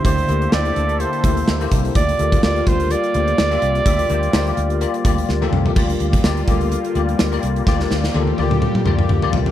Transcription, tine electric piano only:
X:1
M:4/4
L:1/16
Q:"Swing 16ths" 1/4=126
K:Gdor
V:1 name="Tine electric piano"
[B,EGd]2 [B,EGc]2 [B,EGc]3 z [B,EGc]2 [B,EGc]2 z [B,EGc]2 z | [B,FGd]2 [B,FGA]2 [B,FGB]3 z [B,FGd]2 [B,FGc]2 z [B,FGe]2 z | [B,FGe]2 [B,FGc]2 [B,FGd]3 z [B,FGd]2 [B,FGd]2 z [B,FGA]2 z | [B,FGd]3 z [B,FGd]2 [B,FGA]3 z [B,FGd]2 z [B,FGd]2 z |
[B,FGd]3 z [B,FGA]2 [B,FGd]3 z [B,FGd]2 z [B,FGd]2 z |]
V:2 name="Tine electric piano" clef=bass
D,6 z8 z2 | D,6 z8 z2 | D,6 z8 z2 | D,6 z8 z2 |
D,6 z8 z2 |]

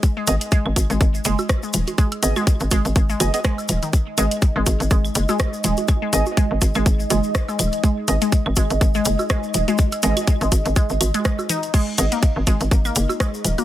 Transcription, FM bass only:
X:1
M:4/4
L:1/16
Q:"Swing 16ths" 1/4=123
K:G#m
V:1 name="FM bass" clef=bass
z2 G,,, z2 G,,, G,,, G,,, G,,,2 F,,, z3 D,,, z | z2 G,,, z2 G,,, G,,, G,,, G,,,2 F,,, z3 D,,, z | z2 G,,, z2 G,,, G,,, G,,, G,,,2 F,,, z3 D,,, z | z2 G,,, z2 G,,, G,,, G,,, G,,,2 F,,, z3 D,,, z |
z2 G,,, z2 G,,, G,,, G,,, G,,,2 F,,, z3 D,,, z | z2 G,,, z2 G,,, G,,, G,,, z G,,, G,,, z4 z | z2 G,,, z2 G,,, G,,, G,,, G,,,2 F,,, z3 D,,, z |]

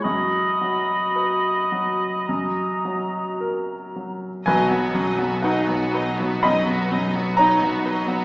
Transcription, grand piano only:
X:1
M:4/4
L:1/16
Q:1/4=59
K:B
V:1 name="Grand piano"
z16 | [Bg]4 [Bf]4 [db]4 [ca]4 |]
V:2 name="Grand piano" clef=bass
F,,2 F,2 B2 F,2 F,,2 F,2 A2 F,2 | B,,, F, F,, F, D F, B F, F,, F, F,, F, D F, B F, |]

